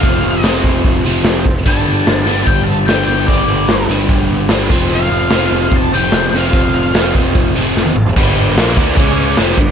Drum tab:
CC |----------------|----------------|----------------|----------------|
RD |----------------|----------------|----------------|----------------|
HH |o-o-o-o-o-o-o-o-|o-o-o-o-o-o-o-o-|o-o-o-o-o-o-o-o-|o-o-o-o-o-o-o-o-|
SD |----o-------o---|----o-------o---|----o-------o---|----o-------o---|
T1 |----------------|----------------|----------------|----------------|
T2 |----------------|----------------|----------------|----------------|
FT |----------------|----------------|----------------|----------------|
BD |o-----o-o-----o-|o-------o-------|o-------o-----o-|--------o-------|

CC |----------------|x---------------|
RD |----------------|--x-x-x-x-x-x-x-|
HH |o-o-o-o-o-o-----|----------------|
SD |----o-------o---|----o-------o---|
T1 |-------------o--|----------------|
T2 |--------------o-|----------------|
FT |---------------o|----------------|
BD |o-----o-o-------|o-----o-o-----o-|